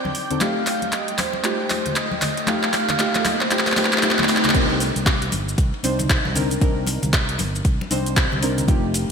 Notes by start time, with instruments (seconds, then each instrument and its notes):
Already playing: synth stab C4 D4 D#4 C5, soft synth lead D5, analog synth pad G5, riser
0.05 fingered electric bass C2, muted conga, high conga, low conga
0.15 open hi-hat
0.30 synth stab C4 D4 D#4 A4, closed hi-hat, low conga
0.40 synth stab A3 D#4 F4 G4, soft synth lead F5, clap, closed hi-hat, muted conga, high conga
0.67 clap, open hi-hat
0.82 fingered electric bass F1, closed hi-hat, high conga
0.92 soft synth lead D#5, clap, closed hi-hat, muted conga
1.08 closed hi-hat
1.18 fingered electric bass F2, soft synth lead C5, clap, open hi-hat, high conga
1.33 muted conga
1.43 synth stab A3 D#4 F4 G4, clap, closed hi-hat
1.70 clap, open hi-hat, high conga
1.86 closed hi-hat, muted conga, low conga
1.96 soft synth lead D#5, clap, closed hi-hat
2.11 high conga
2.22 clap, open hi-hat, muted conga, low conga
2.37 closed hi-hat
2.47 synth stab A3 D#4 F4 G4, soft synth lead F5, clap, closed hi-hat, high conga
2.63 clap
2.73 clap, open hi-hat, muted conga
2.89 clap, closed hi-hat, high conga, low conga
2.98 synth stab A3 D#4 F4 G4, clap, closed hi-hat
3.15 clap, closed hi-hat, muted conga
3.25 soft synth lead D#5, clap, open hi-hat, high conga
3.41 soft synth lead C5, clap
3.50 synth stab A3 D#4 F4 G4, clap, closed hi-hat
3.59 clap
3.67 clap, open hi-hat, muted conga
3.72 clap
3.76 synth stab A3 D#4 F4 G4, clap, open hi-hat, high conga
3.85 clap
3.93 clap, closed hi-hat
3.98 clap
4.02 synth stab A3 D#4 F4 G4, clap, closed hi-hat, muted conga
4.11 clap
4.19 clap, high conga, low conga
4.24 clap
4.28 synth stab A3 D#4 F4 G4, clap, open hi-hat
4.37 clap
4.44 clap, closed hi-hat, low conga
4.49 clap
4.54 fingered electric bass C2, synth stab C4 D4 D#4 A#4, kick, closed hi-hat, ride, crash, high conga, shaker
4.70 muted conga
4.80 open hi-hat, ride, shaker
4.96 fingered electric bass C2, closed hi-hat, high conga, shaker
5.06 kick, snare, clap, closed hi-hat, ride, muted conga, shaker
5.22 closed hi-hat
5.32 fingered electric bass G1, open hi-hat, ride, high conga, shaker
5.49 shaker
5.58 fingered electric bass C2, kick, closed hi-hat, ride, muted conga, shaker
5.74 ride
5.83 fingered electric bass C2, synth stab C4 D4 D#4 C5, open hi-hat, ride, high conga, shaker
5.99 closed hi-hat, ride, muted conga, low conga, shaker
6.10 kick, snare, clap, closed hi-hat, ride, shaker
6.25 fingered electric bass C2, snare, high conga
6.35 synth stab C4 D4 D#4 A#4, open hi-hat, ride, low conga, shaker
6.51 closed hi-hat, muted conga, shaker
6.60 fingered electric bass C2, synth stab C4 D4 D#4 A#4, kick, closed hi-hat, ride, high conga, shaker
6.87 open hi-hat, ride, muted conga, shaker
7.03 fingered electric bass C2, closed hi-hat, high conga, low conga, shaker
7.13 kick, snare, clap, closed hi-hat, ride, shaker
7.29 closed hi-hat
7.38 fingered electric bass G1, snare, open hi-hat, ride, muted conga, high conga, shaker
7.55 ride, shaker
7.65 fingered electric bass C2, kick, closed hi-hat, ride, shaker
7.81 muted conga
7.90 fingered electric bass C2, synth stab C4 D4 D#4 C5, open hi-hat, ride, high conga, shaker
8.06 closed hi-hat, shaker
8.16 kick, snare, clap, closed hi-hat, ride, shaker
8.32 fingered electric bass C2, muted conga, high conga, low conga
8.42 synth stab C4 D4 D#4 A#4, open hi-hat, ride, shaker
8.58 closed hi-hat, low conga, shaker
8.67 fingered electric bass F1, synth stab A3 D#4 F4 G4, kick, closed hi-hat, ride, muted conga, high conga, shaker
8.94 open hi-hat, ride, shaker